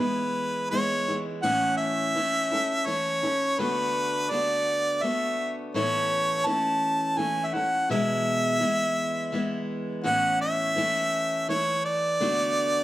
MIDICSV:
0, 0, Header, 1, 3, 480
1, 0, Start_track
1, 0, Key_signature, 3, "major"
1, 0, Tempo, 718563
1, 951, Time_signature, 3, 2, 24, 8
1, 8575, End_track
2, 0, Start_track
2, 0, Title_t, "Harmonica"
2, 0, Program_c, 0, 22
2, 1, Note_on_c, 0, 71, 70
2, 466, Note_off_c, 0, 71, 0
2, 470, Note_on_c, 0, 73, 77
2, 805, Note_off_c, 0, 73, 0
2, 955, Note_on_c, 0, 78, 84
2, 1176, Note_off_c, 0, 78, 0
2, 1185, Note_on_c, 0, 76, 90
2, 1915, Note_on_c, 0, 73, 77
2, 1925, Note_off_c, 0, 76, 0
2, 2400, Note_on_c, 0, 71, 85
2, 2410, Note_off_c, 0, 73, 0
2, 2879, Note_on_c, 0, 74, 81
2, 2889, Note_off_c, 0, 71, 0
2, 3362, Note_on_c, 0, 76, 79
2, 3372, Note_off_c, 0, 74, 0
2, 3718, Note_off_c, 0, 76, 0
2, 3843, Note_on_c, 0, 73, 80
2, 4319, Note_on_c, 0, 81, 98
2, 4329, Note_off_c, 0, 73, 0
2, 4797, Note_on_c, 0, 80, 84
2, 4807, Note_off_c, 0, 81, 0
2, 4986, Note_on_c, 0, 76, 57
2, 4996, Note_off_c, 0, 80, 0
2, 5039, Note_on_c, 0, 78, 78
2, 5049, Note_off_c, 0, 76, 0
2, 5277, Note_off_c, 0, 78, 0
2, 5285, Note_on_c, 0, 76, 91
2, 6453, Note_off_c, 0, 76, 0
2, 6710, Note_on_c, 0, 78, 101
2, 6935, Note_off_c, 0, 78, 0
2, 6955, Note_on_c, 0, 76, 92
2, 7647, Note_off_c, 0, 76, 0
2, 7679, Note_on_c, 0, 73, 79
2, 7899, Note_off_c, 0, 73, 0
2, 7916, Note_on_c, 0, 74, 84
2, 8575, Note_off_c, 0, 74, 0
2, 8575, End_track
3, 0, Start_track
3, 0, Title_t, "Steel-string acoustic guitar"
3, 0, Program_c, 1, 25
3, 0, Note_on_c, 1, 52, 49
3, 0, Note_on_c, 1, 56, 48
3, 3, Note_on_c, 1, 59, 57
3, 6, Note_on_c, 1, 64, 54
3, 469, Note_off_c, 1, 52, 0
3, 470, Note_off_c, 1, 56, 0
3, 476, Note_off_c, 1, 59, 0
3, 476, Note_on_c, 1, 52, 52
3, 478, Note_off_c, 1, 64, 0
3, 478, Note_on_c, 1, 56, 50
3, 486, Note_on_c, 1, 59, 60
3, 492, Note_on_c, 1, 64, 58
3, 711, Note_off_c, 1, 64, 0
3, 713, Note_off_c, 1, 52, 0
3, 714, Note_off_c, 1, 56, 0
3, 714, Note_off_c, 1, 59, 0
3, 719, Note_on_c, 1, 64, 42
3, 722, Note_on_c, 1, 59, 41
3, 730, Note_on_c, 1, 56, 35
3, 732, Note_on_c, 1, 52, 34
3, 949, Note_off_c, 1, 52, 0
3, 955, Note_off_c, 1, 64, 0
3, 956, Note_off_c, 1, 59, 0
3, 956, Note_on_c, 1, 45, 62
3, 957, Note_on_c, 1, 52, 70
3, 959, Note_off_c, 1, 56, 0
3, 961, Note_on_c, 1, 57, 72
3, 963, Note_on_c, 1, 61, 73
3, 969, Note_on_c, 1, 64, 72
3, 1430, Note_off_c, 1, 52, 0
3, 1434, Note_off_c, 1, 45, 0
3, 1437, Note_off_c, 1, 61, 0
3, 1438, Note_on_c, 1, 52, 45
3, 1440, Note_off_c, 1, 64, 0
3, 1444, Note_off_c, 1, 57, 0
3, 1447, Note_on_c, 1, 57, 55
3, 1449, Note_on_c, 1, 61, 54
3, 1455, Note_on_c, 1, 64, 50
3, 1673, Note_off_c, 1, 64, 0
3, 1675, Note_off_c, 1, 52, 0
3, 1679, Note_off_c, 1, 57, 0
3, 1680, Note_off_c, 1, 61, 0
3, 1681, Note_on_c, 1, 64, 42
3, 1690, Note_on_c, 1, 61, 35
3, 1693, Note_on_c, 1, 57, 34
3, 1908, Note_off_c, 1, 57, 0
3, 1912, Note_off_c, 1, 61, 0
3, 1913, Note_on_c, 1, 52, 49
3, 1916, Note_off_c, 1, 64, 0
3, 1916, Note_on_c, 1, 57, 46
3, 1920, Note_on_c, 1, 61, 54
3, 1929, Note_on_c, 1, 64, 51
3, 2148, Note_off_c, 1, 64, 0
3, 2153, Note_off_c, 1, 52, 0
3, 2153, Note_off_c, 1, 61, 0
3, 2154, Note_off_c, 1, 57, 0
3, 2156, Note_on_c, 1, 64, 38
3, 2161, Note_on_c, 1, 61, 35
3, 2168, Note_on_c, 1, 57, 32
3, 2392, Note_off_c, 1, 57, 0
3, 2394, Note_off_c, 1, 64, 0
3, 2397, Note_off_c, 1, 61, 0
3, 2397, Note_on_c, 1, 50, 74
3, 2400, Note_on_c, 1, 57, 69
3, 2406, Note_on_c, 1, 59, 70
3, 2406, Note_on_c, 1, 66, 73
3, 2869, Note_off_c, 1, 50, 0
3, 2877, Note_off_c, 1, 59, 0
3, 2877, Note_on_c, 1, 50, 51
3, 2879, Note_off_c, 1, 57, 0
3, 2879, Note_off_c, 1, 66, 0
3, 2882, Note_on_c, 1, 57, 45
3, 2885, Note_on_c, 1, 59, 54
3, 2893, Note_on_c, 1, 66, 50
3, 3345, Note_off_c, 1, 50, 0
3, 3353, Note_on_c, 1, 50, 45
3, 3356, Note_off_c, 1, 57, 0
3, 3359, Note_off_c, 1, 59, 0
3, 3363, Note_off_c, 1, 66, 0
3, 3364, Note_on_c, 1, 57, 49
3, 3367, Note_on_c, 1, 59, 51
3, 3371, Note_on_c, 1, 66, 55
3, 3834, Note_off_c, 1, 50, 0
3, 3836, Note_off_c, 1, 57, 0
3, 3837, Note_on_c, 1, 45, 62
3, 3841, Note_off_c, 1, 59, 0
3, 3841, Note_on_c, 1, 52, 64
3, 3842, Note_off_c, 1, 66, 0
3, 3844, Note_on_c, 1, 57, 69
3, 3847, Note_on_c, 1, 61, 68
3, 3849, Note_on_c, 1, 64, 75
3, 4310, Note_off_c, 1, 52, 0
3, 4311, Note_off_c, 1, 57, 0
3, 4312, Note_on_c, 1, 52, 54
3, 4313, Note_off_c, 1, 61, 0
3, 4315, Note_off_c, 1, 45, 0
3, 4319, Note_on_c, 1, 57, 53
3, 4321, Note_on_c, 1, 61, 58
3, 4327, Note_off_c, 1, 64, 0
3, 4330, Note_on_c, 1, 64, 60
3, 4786, Note_off_c, 1, 52, 0
3, 4789, Note_on_c, 1, 52, 44
3, 4792, Note_off_c, 1, 57, 0
3, 4794, Note_off_c, 1, 61, 0
3, 4800, Note_on_c, 1, 57, 53
3, 4802, Note_off_c, 1, 64, 0
3, 4802, Note_on_c, 1, 61, 48
3, 4805, Note_on_c, 1, 64, 47
3, 5025, Note_off_c, 1, 64, 0
3, 5032, Note_off_c, 1, 52, 0
3, 5033, Note_on_c, 1, 64, 42
3, 5034, Note_off_c, 1, 61, 0
3, 5037, Note_off_c, 1, 57, 0
3, 5042, Note_on_c, 1, 61, 36
3, 5049, Note_on_c, 1, 57, 35
3, 5273, Note_on_c, 1, 40, 61
3, 5274, Note_off_c, 1, 64, 0
3, 5275, Note_on_c, 1, 47, 70
3, 5276, Note_on_c, 1, 52, 67
3, 5278, Note_off_c, 1, 61, 0
3, 5280, Note_off_c, 1, 57, 0
3, 5282, Note_on_c, 1, 56, 69
3, 5282, Note_on_c, 1, 59, 76
3, 5285, Note_on_c, 1, 64, 66
3, 5743, Note_off_c, 1, 52, 0
3, 5746, Note_on_c, 1, 52, 52
3, 5747, Note_off_c, 1, 56, 0
3, 5751, Note_off_c, 1, 59, 0
3, 5754, Note_off_c, 1, 40, 0
3, 5755, Note_off_c, 1, 47, 0
3, 5755, Note_on_c, 1, 56, 51
3, 5758, Note_off_c, 1, 64, 0
3, 5759, Note_on_c, 1, 59, 54
3, 5761, Note_on_c, 1, 64, 55
3, 6219, Note_off_c, 1, 52, 0
3, 6224, Note_off_c, 1, 56, 0
3, 6227, Note_on_c, 1, 52, 55
3, 6229, Note_off_c, 1, 59, 0
3, 6232, Note_on_c, 1, 56, 61
3, 6234, Note_off_c, 1, 64, 0
3, 6237, Note_on_c, 1, 59, 59
3, 6242, Note_on_c, 1, 64, 52
3, 6700, Note_off_c, 1, 52, 0
3, 6704, Note_on_c, 1, 45, 65
3, 6706, Note_off_c, 1, 56, 0
3, 6708, Note_on_c, 1, 52, 68
3, 6709, Note_off_c, 1, 64, 0
3, 6709, Note_on_c, 1, 57, 67
3, 6711, Note_off_c, 1, 59, 0
3, 6714, Note_on_c, 1, 61, 72
3, 6717, Note_on_c, 1, 64, 65
3, 7180, Note_off_c, 1, 52, 0
3, 7188, Note_on_c, 1, 52, 50
3, 7189, Note_off_c, 1, 45, 0
3, 7191, Note_off_c, 1, 57, 0
3, 7192, Note_off_c, 1, 61, 0
3, 7193, Note_off_c, 1, 64, 0
3, 7193, Note_on_c, 1, 57, 50
3, 7200, Note_on_c, 1, 61, 55
3, 7201, Note_on_c, 1, 64, 57
3, 7664, Note_off_c, 1, 52, 0
3, 7672, Note_on_c, 1, 52, 55
3, 7673, Note_off_c, 1, 57, 0
3, 7676, Note_off_c, 1, 61, 0
3, 7676, Note_on_c, 1, 57, 48
3, 7677, Note_off_c, 1, 64, 0
3, 7686, Note_on_c, 1, 64, 58
3, 8150, Note_off_c, 1, 52, 0
3, 8152, Note_on_c, 1, 50, 70
3, 8153, Note_off_c, 1, 57, 0
3, 8156, Note_on_c, 1, 57, 71
3, 8157, Note_on_c, 1, 59, 77
3, 8159, Note_off_c, 1, 64, 0
3, 8163, Note_on_c, 1, 66, 82
3, 8575, Note_off_c, 1, 50, 0
3, 8575, Note_off_c, 1, 57, 0
3, 8575, Note_off_c, 1, 59, 0
3, 8575, Note_off_c, 1, 66, 0
3, 8575, End_track
0, 0, End_of_file